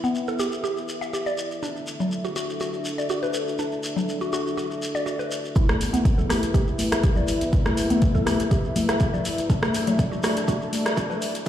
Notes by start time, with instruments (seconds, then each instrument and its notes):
Already playing: analog synth pad E4 B4 E5
0.04 synth pluck B3, shekere
0.15 shekere
0.27 synth pluck A4, shekere
0.39 synth pluck G4, shekere
0.52 shekere
0.64 synth pluck G4, shekere
0.77 shekere
0.89 shekere
1.01 synth pluck E5, shekere
1.13 synth pluck G4, shekere
1.26 synth pluck D5, shekere
1.38 shekere
1.51 shekere
1.62 analog synth pad D4 A4, synth pluck D4, shekere
1.76 shekere
1.87 shekere
2.00 synth pluck F#3, shekere
2.12 shekere
2.25 synth pluck F#4, shekere
2.36 synth pluck F#4, shekere
2.50 shekere
2.60 synth pluck F#4, shekere
2.73 shekere
2.85 shekere
2.98 synth pluck D5, shekere
3.10 synth pluck F#4, shekere
3.23 synth pluck B4, shekere
3.34 shekere
3.48 shekere
3.59 synth pluck D4, shekere
3.72 shekere
3.83 shekere
3.96 synth pluck F#3, shekere
4.09 shekere
4.21 synth pluck F#4, shekere
4.33 synth pluck F#4, shekere
4.47 shekere
4.57 synth pluck F#4, shekere
4.71 shekere
4.82 shekere
4.95 synth pluck D5, shekere
5.06 synth pluck F#4, shekere
5.19 synth pluck B4, shekere
5.31 shekere
5.45 shekere
5.56 synth pluck E4, analog synth pad E4 B4 E5, kick, closed hi-hat, shekere
5.69 cross-stick, high conga, shekere
5.81 analog synth bass E2, open hi-hat, shekere
5.93 synth pluck B3, closed hi-hat, high conga, shekere
6.05 kick, closed hi-hat, shekere
6.18 analog synth bass E2, synth pluck A4, low conga, shekere
6.30 synth pluck G4, cross-stick, open hi-hat, high conga, shekere
6.43 closed hi-hat, shekere
6.54 analog synth bass B1, synth pluck G4, kick, closed hi-hat, high conga, shekere
6.67 shekere
6.79 open hi-hat, high conga, shekere
6.92 analog synth bass E2, synth pluck E5, cross-stick, closed hi-hat, shekere
7.04 synth pluck G4, kick, closed hi-hat, shekere
7.15 synth pluck D5, high conga, low conga, shekere
7.28 open hi-hat, shekere
7.41 analog synth bass E2, closed hi-hat, shekere
7.53 synth pluck E4, kick, closed hi-hat, shekere
7.66 cross-stick, high conga, shekere
7.77 analog synth bass E2, open hi-hat, shekere
7.90 synth pluck B3, closed hi-hat, high conga, shekere
8.02 kick, closed hi-hat, shekere
8.14 analog synth bass E2, synth pluck A4, kick, low conga, shekere
8.26 synth pluck G4, cross-stick, open hi-hat, high conga, shekere
8.40 closed hi-hat, shekere
8.51 analog synth bass B1, synth pluck G4, kick, closed hi-hat, shekere
8.64 shekere
8.76 open hi-hat, high conga, low conga, shekere
8.89 analog synth bass E2, synth pluck E5, cross-stick, closed hi-hat, shekere
9.00 synth pluck G4, kick, closed hi-hat, shekere
9.14 synth pluck D5, low conga, shekere
9.25 open hi-hat, shekere
9.38 analog synth bass D2, closed hi-hat, shekere
9.50 analog synth pad D4 A4, synth pluck D4, kick, closed hi-hat, shekere
9.62 cross-stick, high conga, shekere
9.74 analog synth bass D2, open hi-hat, shekere
9.87 synth pluck F#3, closed hi-hat, high conga, shekere
9.99 kick, closed hi-hat, shekere
10.12 analog synth bass D2, synth pluck F#4, low conga, shekere
10.23 synth pluck F#4, cross-stick, open hi-hat, high conga, shekere
10.37 closed hi-hat, shekere
10.47 analog synth bass A1, synth pluck F#4, kick, closed hi-hat, high conga, shekere
10.62 shekere
10.73 open hi-hat, high conga, shekere
10.86 analog synth bass D2, synth pluck D5, cross-stick, closed hi-hat, shekere
10.97 synth pluck F#4, kick, closed hi-hat, shekere
11.10 synth pluck B4, high conga, low conga, shekere
11.22 open hi-hat, shekere
11.35 analog synth bass D2, closed hi-hat, shekere